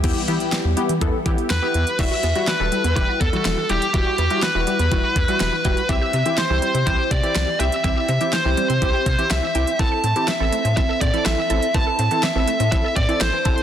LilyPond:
<<
  \new Staff \with { instrumentName = "Lead electric guitar" } { \time 4/4 \key e \minor \tempo 4 = 123 r2. b'4 | e''4 b'4 b'8 a'4 g'8 | g'4 b'2 b'4 | e''4 c''4 c''8 d''4 e''8 |
e''4 c''2 e''4 | a''4 e''4 e''8 d''8 e''4 | a''4 e''4 e''8 d''8 c''4 | }
  \new Staff \with { instrumentName = "Analog polysynth" } { \time 4/4 \key e \minor <b e' g'>16 r16 <b e' g'>8. r16 <b e' g'>16 r16 <b e' a'>16 r16 <b e' g'>8 r16 <b e' g'>8 r16 | <g e' fis'>8 r16 <g e' fis'>16 r16 <g e' a'>8 r16 <g e' g'>8 r16 <g e' fis'>8 r16 <g e' g'>16 r16 | <g e' fis'>8 r16 <g e' fis'>16 r16 <g e' fis'>8 r16 <g e' fis'>8 r16 <g e' fis'>8 r16 <g e' fis'>16 r16 | <c' e' g'>8 r16 <c' e' g'>16 r16 <c' e' g'>8 r16 <c' e' g'>8 r16 <c' e' g'>8 r16 <c' e' g'>16 r16 |
<c' e' g'>8 r16 <c' e' g'>16 r16 <c' e' g'>8 r16 <c' e' g'>8 r16 <c' e' g'>8 r16 <c' e' g'>16 r16 | <c' e' a'>8 r16 <c' e' g'>16 r16 <c' e' a'>8 r16 <c' e' a'>8 r16 <c' e' a'>8 r16 <c' e' a'>16 r16 | <c' e' b'>8 r16 <c' e' a'>16 r16 <c' e' a'>8 r16 <c' e' a'>8 r16 <c' e' a'>8 r16 <c' e' a'>16 r16 | }
  \new Staff \with { instrumentName = "Analog synth pad" } { \time 4/4 \key e \minor <e g b g'>1 | r1 | r1 | r1 |
r1 | r1 | r1 | }
  \new Staff \with { instrumentName = "Synth arpeggio sound" } { \clef bass \time 4/4 \key e \minor r1 | e16 fis'16 b16 e16 e16 e16 g16 b16 e16 fis'16 b16 e16 e16 e16 g''16 r16 | e16 fis'16 b16 e16 e16 e16 g16 b16 e16 fis'16 b16 e16 e16 e16 g''16 r16 | e16 g'16 c'16 e16 e16 e16 g16 c'16 e16 g'16 c'16 e16 e16 e16 g''16 r16 |
e16 g'16 c'16 e16 e16 e16 g16 c'16 e16 g'16 c'16 e16 e16 e16 g''16 r16 | e16 a'16 c'16 e16 e16 e16 a16 c'16 e16 a'16 c'16 e16 e16 e16 a''16 r16 | e16 a'16 c'16 e16 e16 e16 a16 c'16 e16 a'16 c'16 e16 e16 e16 a''16 r16 | }
  \new Staff \with { instrumentName = "Analog synth bass" } { \clef bass \time 4/4 \key e \minor e,16 r16 e16 r8 e,16 r16 e16 e,16 r16 e16 r16 e,16 r16 e,16 r16 | e,,16 r16 e,16 r8 e,,16 r16 e,16 e,,16 r16 e,16 r16 e,,16 r16 e,,16 r16 | e,,16 r16 e,16 r8 e,,16 r16 e,16 e,,16 r16 e,16 r16 e,,16 r16 e,,16 r16 | c,16 r16 c16 r8 c,16 r16 c16 c,16 r16 c16 r16 c,16 r16 c,16 r16 |
c,16 r16 c16 r8 c,16 r16 c16 c,16 r16 c16 r16 c,16 r16 c,16 r16 | a,,16 r16 a,16 r8 a,,16 r16 a,16 a,,16 r16 a,16 r16 a,,16 r16 a,,16 r16 | a,,16 r16 a,16 r8 a,,16 r16 a,16 a,,16 r16 a,16 r16 a,,16 r16 a,,16 r16 | }
  \new DrumStaff \with { instrumentName = "Drums" } \drummode { \time 4/4 <cymc hh bd>8 hh16 hh16 <hh sn>8 hh16 hh16 <hh bd>8 <hh bd>16 hh16 <hh sn>8 hh16 hh16 | <cymc hh bd>8 hh16 hh16 <hh sn>8 hh16 hh16 <hh bd>8 <hh bd>16 hh16 <hh sn>8 hh16 hh16 | <hh bd>8 hh16 hh16 <hh sn>8 hh16 hh16 <hh bd>8 <hh bd>16 hh16 <hh sn>8 <hh bd>16 hh16 | <hh bd>8 hh16 hh16 <hh sn>8 hh16 hh16 <hh bd>8 <hh bd>16 hh16 <hh sn>8 hh16 hh16 |
<hh bd>8 hh16 hh16 <hh sn>8 hh16 hh16 <hh bd>8 <hh bd>16 hh16 <hh sn>8 hh16 hh16 | <hh bd>8 hh16 hh16 <hh sn>8 hh16 hh16 <hh bd>8 <hh bd>16 hh16 <hh sn>8 hh16 hh16 | <hh bd>8 hh16 hh16 <hh sn>8 hh16 hh16 <hh bd>8 <hh bd>16 hh16 <hh sn>8 <hh bd>16 hh16 | }
>>